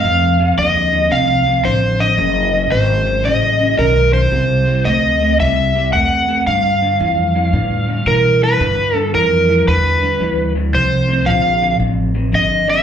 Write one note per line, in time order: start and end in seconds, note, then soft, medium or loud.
0.00 0.56 F2 medium
0.00 0.54 F5 medium
0.05 0.36 F2 medium
0.05 0.36 C3 medium
0.40 0.56 F2 medium
0.40 0.56 C3 medium
0.58 1.09 D#2 medium
0.58 0.89 F2 medium
0.58 0.89 D3 medium
0.58 1.13 D#5 medium
0.93 1.09 F2 medium
0.93 1.09 D3 medium
1.11 1.63 C2 medium
1.11 1.43 F2 medium
1.11 1.43 C3 medium
1.11 1.66 F5 medium
1.46 1.63 F2 medium
1.46 1.63 C3 medium
1.64 2.16 A1 medium
1.64 1.96 F2 medium
1.64 1.96 D3 medium
1.64 2.01 C5 medium
1.99 2.16 F2 medium
1.99 2.16 D3 medium
1.99 2.74 D#5 medium
2.18 2.70 F#1 medium
2.18 2.50 F#2 medium
2.18 2.50 C#3 medium
2.53 2.70 F#2 medium
2.53 2.70 C#3 medium
2.71 3.23 G#1 medium
2.71 3.03 F#2 medium
2.71 3.03 D#3 medium
2.71 3.27 C5 medium
3.06 3.23 F#2 medium
3.06 3.23 D#3 medium
3.24 3.77 A1 medium
3.24 3.56 F#2 medium
3.24 3.57 C#3 medium
3.24 3.80 D#5 medium
3.59 3.76 F#2 medium
3.59 3.77 C#3 medium
3.78 4.31 B1 medium
3.78 4.10 F#2 medium
3.78 4.10 D#3 medium
3.78 4.13 A#4 medium
4.14 4.30 F#2 medium
4.14 4.30 D#3 medium
4.14 4.88 C5 medium
4.32 4.84 C2 medium
4.32 4.64 C3 medium
4.32 4.64 G3 medium
4.67 4.84 C3 medium
4.67 4.84 G3 medium
4.85 5.38 D2 medium
4.85 5.17 C3 medium
4.85 5.18 A3 loud
4.85 5.40 D#5 loud
5.21 5.38 C3 medium
5.21 5.38 A3 medium
5.40 5.92 C2 medium
5.40 5.71 C3 medium
5.40 5.72 G3 medium
5.40 5.92 E5 medium
5.75 5.91 C3 medium
5.75 5.91 G3 medium
5.93 6.45 E2 medium
5.93 6.25 C3 medium
5.93 6.25 A3 medium
5.93 6.47 F#5 loud
6.28 6.45 C3 medium
6.28 6.45 A3 medium
6.46 6.78 G2 medium
6.46 6.98 G2 medium
6.46 6.78 D3 medium
6.46 8.12 F5 loud
6.82 6.98 G2 medium
6.82 6.99 D3 medium
7.00 7.52 F2 medium
7.00 7.32 G2 medium
7.00 7.32 E3 medium
7.35 7.51 G2 medium
7.35 7.52 E3 medium
7.53 7.85 G2 medium
7.53 8.05 A2 medium
7.53 7.85 D3 medium
7.88 8.05 G2 medium
7.88 8.05 D3 medium
8.06 8.38 G2 medium
8.06 8.58 B2 medium
8.06 8.39 E3 medium
8.06 8.43 A#4 medium
8.42 8.58 G2 medium
8.42 8.59 E3 medium
8.42 8.97 B4 medium
8.60 8.92 G2 medium
8.60 9.12 G2 medium
8.60 8.92 D3 medium
8.95 9.12 G2 medium
8.95 9.12 D3 medium
8.95 9.14 A4 medium
9.13 9.66 F2 loud
9.13 9.45 G2 medium
9.13 9.45 E3 medium
9.13 9.68 A#4 medium
9.49 9.65 G2 medium
9.49 9.65 E3 medium
9.67 10.19 E2 medium
9.67 9.99 G2 medium
9.67 9.99 D3 medium
9.67 10.52 B4 medium
10.03 10.19 G2 medium
10.03 10.19 D3 medium
10.20 10.72 D2 medium
10.20 10.52 G2 medium
10.20 10.52 E3 medium
10.55 10.72 G2 medium
10.55 10.72 E3 medium
10.73 11.25 C2 medium
10.73 11.05 F2 medium
10.73 11.05 C3 medium
10.73 11.29 C5 medium
11.08 11.25 F2 medium
11.08 11.25 C3 medium
11.26 11.78 A#1 medium
11.26 11.58 F2 medium
11.26 11.58 D3 medium
11.26 11.76 F5 loud
11.61 11.78 F2 medium
11.61 11.78 D3 medium
11.80 12.32 A1 medium
11.80 12.11 F2 medium
11.80 12.12 C3 medium
12.14 12.31 F2 medium
12.14 12.32 C3 medium
12.32 12.83 G1 medium
12.32 12.64 F2 medium
12.32 12.65 D3 loud
12.32 12.70 D#5 loud
12.67 12.83 F2 medium
12.67 12.83 D3 medium
12.67 12.83 E5 loud